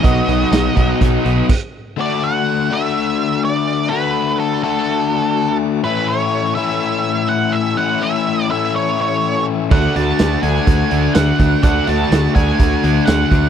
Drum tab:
CC |------x-|--------|--------|--------|
HH |xxxxxx--|--------|--------|--------|
TB |--x-----|--------|--------|--------|
SD |--o-----|--------|--------|--------|
BD |o--oo-o-|--------|--------|--------|

CC |--------|x-------|--------|
HH |--------|-xxxxxxx|xxxxxxxx|
TB |--------|--x---x-|--x---x-|
SD |--------|--o---o-|--o---o-|
BD |--------|o---o--o|o--oo--o|